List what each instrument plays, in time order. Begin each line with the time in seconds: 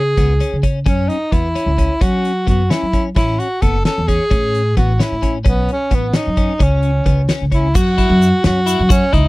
Already playing: upright bass C#3, tenor saxophone G#4
0.17 upright bass C#2, clean electric guitar B3, kick, closed hi-hat
0.40 clean electric guitar C#4, closed hi-hat
0.53 upright bass C#3
0.63 clean electric guitar C#4, kick, closed hi-hat
0.86 upright bass F#2, clean electric guitar C#4, tenor saxophone C#4, kick, closed hi-hat
1.09 tenor saxophone D#4, closed hi-hat
1.32 upright bass E2, clean electric guitar B3, tenor saxophone E4, kick, closed hi-hat
1.56 clean electric guitar C#4, closed hi-hat
1.66 upright bass C#2
1.78 clean electric guitar C#4, kick, closed hi-hat
2.01 upright bass F#3, clean electric guitar C#4, tenor saxophone F#4, kick, closed hi-hat
2.25 closed hi-hat
2.47 upright bass F#2, clean electric guitar B3, tenor saxophone F#4, kick, closed hi-hat
2.70 clean electric guitar C#4, tenor saxophone E4, snare, closed hi-hat
2.83 upright bass F#3
2.93 clean electric guitar C#4, kick, closed hi-hat
3.16 upright bass A1, clean electric guitar C#4, tenor saxophone E4, kick, closed hi-hat
3.39 tenor saxophone F#4, closed hi-hat
3.62 upright bass F#1, clean electric guitar B3, tenor saxophone A4, kick, closed hi-hat
3.85 clean electric guitar C#4, tenor saxophone A4, snare, closed hi-hat
3.98 upright bass E2
4.07 clean electric guitar C#4, tenor saxophone G#4, kick, closed hi-hat
4.31 upright bass A2, clean electric guitar C#4, kick, closed hi-hat
4.55 closed hi-hat
4.77 upright bass A1, clean electric guitar B3, tenor saxophone F#4, kick, closed hi-hat
5.00 clean electric guitar C#4, tenor saxophone E4, snare, closed hi-hat
5.12 upright bass A2
5.22 clean electric guitar C#4, kick, closed hi-hat
5.45 upright bass B1, tenor saxophone B3, clean electric guitar C#4, kick, closed hi-hat
5.69 tenor saxophone C#4, closed hi-hat
5.91 upright bass A1, clean electric guitar B3, tenor saxophone B3, kick, closed hi-hat
6.13 clean electric guitar C#4, tenor saxophone D#4, snare, closed hi-hat
6.27 upright bass F#2
6.37 clean electric guitar C#4, kick, closed hi-hat
6.59 upright bass C#2, clean electric guitar C#4, tenor saxophone C#4, kick, closed hi-hat
6.83 closed hi-hat
7.06 upright bass C#2, clean electric guitar B3, kick, closed hi-hat
7.29 clean electric guitar C#4, snare, closed hi-hat
7.41 upright bass C#2
7.52 clean electric guitar C#4, tenor saxophone E4, kick, closed hi-hat
7.75 upright bass F#2, clean electric guitar F#4, tenor saxophone F#4, kick, crash, shaker
7.98 clean electric guitar E4, kick, closed hi-hat
8.10 upright bass F#2
8.22 closed hi-hat, shaker
8.44 upright bass F#2, clean electric guitar C#4, tenor saxophone F#4, snare, closed hi-hat
8.66 clean electric guitar E4, closed hi-hat, shaker
8.79 upright bass F#2
8.89 tenor saxophone C#4, clean electric guitar F#4, kick, closed hi-hat, shaker
9.13 upright bass C#2, tenor saxophone D#4, clean electric guitar E4, kick, closed hi-hat